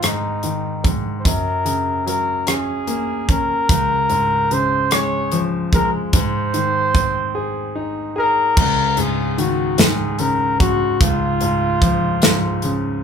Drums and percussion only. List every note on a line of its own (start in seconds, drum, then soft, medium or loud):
0.03 cross-stick medium
0.03 closed hi-hat medium
0.43 closed hi-hat soft
0.84 kick medium
0.84 closed hi-hat soft
1.25 kick medium
1.25 closed hi-hat medium
1.66 closed hi-hat soft
2.08 closed hi-hat soft
2.47 cross-stick loud
2.47 closed hi-hat medium
2.87 closed hi-hat soft
3.29 kick medium
3.29 closed hi-hat soft
3.69 kick loud
3.69 closed hi-hat medium
4.10 closed hi-hat soft
4.51 closed hi-hat soft
4.91 cross-stick loud
4.91 closed hi-hat medium
5.31 closed hi-hat soft
5.73 kick medium
5.73 closed hi-hat soft
6.13 kick loud
6.13 closed hi-hat medium
6.54 closed hi-hat soft
6.95 kick medium
6.95 closed hi-hat soft
8.57 kick loud
8.57 crash medium
8.97 closed hi-hat soft
9.38 closed hi-hat medium
9.78 snare loud
9.78 closed hi-hat medium
10.19 closed hi-hat soft
10.60 kick medium
10.60 closed hi-hat soft
11.01 kick loud
11.01 closed hi-hat loud
11.41 closed hi-hat soft
11.82 kick medium
11.82 closed hi-hat medium
12.22 snare loud
12.22 closed hi-hat medium
12.62 closed hi-hat soft